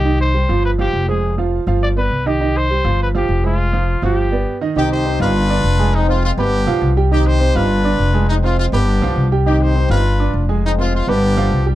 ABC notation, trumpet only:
X:1
M:4/4
L:1/8
Q:1/4=204
K:Cm
V:1 name="Trumpet"
G c3 =B G2 A- | A z3 d =B2 G- | G c3 =B G2 F- | F3 G4 z |
z8 | z8 | z8 | z8 |
z8 | z8 |]